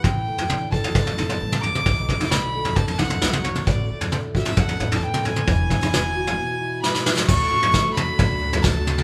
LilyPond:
<<
  \new Staff \with { instrumentName = "Fiddle" } { \time 4/4 \key d \major \tempo 4 = 132 g''4. a''2 d'''8~ | d'''4 b''4 a''8 fis''4 cis''8 | d''4 r8 e''8 fis''8.~ fis''32 a''32 g''8 gis''8~ | gis''2. b''4 |
cis'''4. b''4. a''4 | }
  \new Staff \with { instrumentName = "Twelve-string acoustic guitar" } { \time 4/4 \key d \major r1 | r1 | r1 | r1 |
<d fis a d' a'>8 <a d' a'>8 <d fis a d' a'>8 <a d' a'>8 <fis a d' a'>8 <a d' a'>8 <d fis a d' a'>8 <a d' a'>8 | }
  \new Staff \with { instrumentName = "Steel-string acoustic guitar" } { \time 4/4 \key d \major << { r8 a8 d'8 a'4 a4.~ | a8 a8 d'8 a'4 a4 a8~ | a8 a8 d'8 fis'16 a'8. a4 a8 | r8 cis'16 e'16 fis'8 fis'4 e'4 e'8 |
d'8 fis'4. d'4 fis'8 a8 | } \\ { <a, e>2 a,4 g,8 a,8 | b,2 fis,4 fis4 | a,2 a,4 e4 | e2 b,4 b4 |
d4 fis4. a,4. | } >> }
  \new Staff \with { instrumentName = "Upright bass" } { \clef bass \time 4/4 \key d \major a,,8 r8 a,,4. a,,8 a,,4 | b,,8 r8 b,,4. b,,8 b,,4 | a,,8 r8 a,,4. a,,8 a,,4 | e,,8 r8 e,,4 r2 |
d,8 a,,8 r4 d,2 | }
  \new DrumStaff \with { instrumentName = "Drums" } \drummode { \time 4/4 <bd tomfh>8. tomfh16 toml8 bd16 tomfh16 <bd tomfh>16 tomfh16 tomfh16 tomfh16 r16 toml16 tomfh16 toml16 | <bd tomfh>8 <bd tomfh>16 tomfh16 <sn toml>8. tomfh16 <bd tomfh>16 tomfh16 <tomfh toml>16 tomfh16 sn16 <tomfh toml>16 tomfh16 toml16 | <bd tomfh>8. tomfh16 toml8 bd16 tomfh16 <bd tomfh>16 tomfh16 tomfh16 tomfh16 r16 toml16 tomfh16 toml16 | <bd tomfh>8 <bd tomfh>16 tomfh16 <sn toml>8. tomfh16 r4 sn16 sn16 sn16 sn16 |
<cymc bd tomfh>8. tomfh16 <bd sn>8 <tomfh toml>8 <bd tomfh>8. tomfh16 <bd sn>8 toml16 toml16 | }
>>